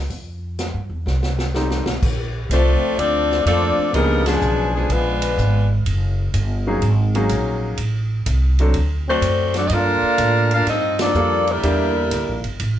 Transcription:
0.10 F2, open hi-hat
0.59 snare, closed hi-hat
0.74 G2
0.90 E2
1.06 C2, snare
1.23 snare
1.39 snare
1.54 G3 A3 C4 D#4, snare
1.70 snare
1.86 B1, snare
2.02 A#1, kick, crash
2.50 C2 F3 A3 C4 D4 F4 C5, hi-hat pedal, ride
2.82 muted upright bass stroke
2.97 D2 F3 A3 C4 D4 F4 A4 D5, ride
3.31 snare
3.44 F2 F3 A3 A#3 C4 D4 F4 A4 D5, hi-hat pedal, ride
3.78 muted upright bass stroke
3.92 C#2 C#3 F3 G3 A#3 B3 D4 D#4 G#4 A#4, ride
4.24 B2 F3 G#3 B3 D4 G#4, snare, ride
4.41 B1, hi-hat pedal
4.73 B2 F3 G#3 B3 D4 G#4
4.89 A#1 F3 G#3 B3 D4 F4 B4, ride
5.22 ride
5.37 G#1, hi-hat pedal
5.86 F#1, ride
6.34 G1, hi-hat pedal, ride
6.67 F#3 A#3 C#4 D#4 G#4
6.82 G#1, ride
7.15 F#3 A#3 C#4 D#4 G#4, ride
7.29 A#1, hi-hat pedal, ride
7.78 A1, ride
8.26 C2, hi-hat pedal, ride
8.59 F#3 A3 C4 D4 A4, ride
8.74 D2, ride
9.08 F#3 A3 C4 D4 F#4 C5
9.21 F#2, hi-hat pedal, ride
9.54 F#3 A3 C4 D4 F#4 A4 D5, snare, ride
9.67 G2 D#5, ride
9.73 A#3 D4 F4 A4 A#4 F5
10.02 muted upright bass stroke
10.18 A2, hi-hat pedal, ride
10.51 A#3 D4 F4 A4 A#4 F5, ride
10.66 G2 C4 F4 A4 D#5, snare, ride
10.70 D#4
10.99 F3 A#3 D4 F4 A4 D5, snare, ride
11.14 F2 G3 A#3 D4 F4 A4, hi-hat pedal
11.47 D3 G3 A#3 D4 E4 A#4, ride
11.63 E2 G3 A#3 D4 E4 G4, ride
12.11 D2, hi-hat pedal, ride
12.28 A#1
12.44 G1, ride
12.60 A1, ride

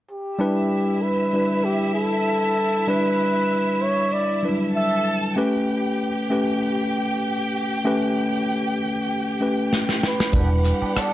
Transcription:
0.11 G4
0.38 G3 D4 E4 B4 E5
1.02 B4
1.33 G3 D4 E4 B4
1.64 G4
1.94 A4
2.88 G3 D4 E4 B4
3.82 C#5
4.13 D5
4.43 F#3 D4 E4 B4
4.50 G3
4.74 A4 E5 A5
5.36 A3 C#4 G4 B4 G5
6.30 A3 C#4 G4 B4
7.85 A3 C#4 G4 B4
9.40 A3 C#4 G4 B4
9.73 snare
9.89 snare
10.03 B4, snare
10.20 snare
10.32 E1 G3 B3 D4 E4 G4 A#4 F#5, kick, closed hi-hat
10.41 B4
10.65 muted clean electric guitar stroke, cross-stick, closed hi-hat
10.82 B3 D4 G4, muted fingered electric bass stroke
10.96 B3 D4 A4, muted fingered electric bass stroke, cross-stick, closed hi-hat
11.00 D5

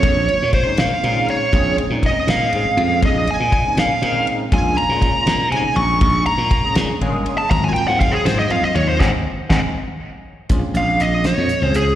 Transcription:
Already playing: G#3 A#3 C#4 F4 C#5
0.03 A#1, kick, ride
0.29 ride
0.42 A#2
0.53 C5, kick, ride
0.64 G#3 C4 C#4 D#4
0.77 A#2 F5, snare, ride
1.03 A#2 G#3 C4 C#4 D#4, ride
1.28 C#5, ride
1.53 A#1 G#3 C4 C#4 G#4, kick, ride
1.78 ride
1.90 A#2 G#3 C4 C#4 D#4
2.03 D#5, kick, ride
2.27 A#2 F5, snare, ride
2.52 G#2 G#3 C4 C#4 G#4, ride
2.65 muted slap bass stroke
2.77 F2, ride
3.02 A#1 D#5, kick, ride
3.27 G#5, ride
3.40 A#2
3.52 kick, ride
3.65 G#3 C4 C#4 D#4
3.77 A#2 F5, snare, ride
4.01 A#2 G#3 C4 C#4 D#4, ride
4.27 ride
4.52 A#1 G#3 A#3 C#4 F4 G#5, kick, ride
4.77 A#5, ride
4.89 A#2 G#3 A#3 C#4 F4
5.02 kick, ride
5.26 A#2, snare, ride
5.51 C3 G#3 A#3 C#4 D#4 G#5, ride
5.64 muted slap bass stroke
5.76 A#1 C#6, ride
6.01 A#1, kick, ride
6.26 A#5, ride
6.38 A#2
6.51 kick, ride
6.63 G#3 A#3 C#4 G#4
6.75 A#2, snare, ride
7.01 G1 G#3 A#3 C#4 G#4, ride
7.26 ride
7.38 A5
7.50 G#1 F#3 A#3 C4 F4 A#5, kick, ride
7.64 G#5
7.73 G5, ride
7.87 G#2 F#3 A#3 C4 F4 F#5
8.00 F5, kick, ride
8.12 G#4
8.25 G#2 C5, snare, ride
8.39 D#5
8.49 F2 F#3 A#3 C4 F4 F5, ride
8.63 D#5, muted slap bass stroke
8.75 D#2 C#5, ride
8.89 C5
9.00 G#1 G#3 C4 D#4 D#5 F#5 G#5, kick, snare
9.50 G#1 G#3 C4 D#4 D#5 F#5 G#5, kick, snare
10.49 A#1 G#3 C4 C#4 F4, kick, closed hi-hat
10.74 A#1 F5, closed hi-hat
11.00 D#5, closed hi-hat
11.24 C#5, snare, closed hi-hat
11.38 F2
11.49 muted slap bass stroke, closed hi-hat
11.61 C#2 G#3 C4 C#4 G#4 C5
11.74 G#4, closed hi-hat

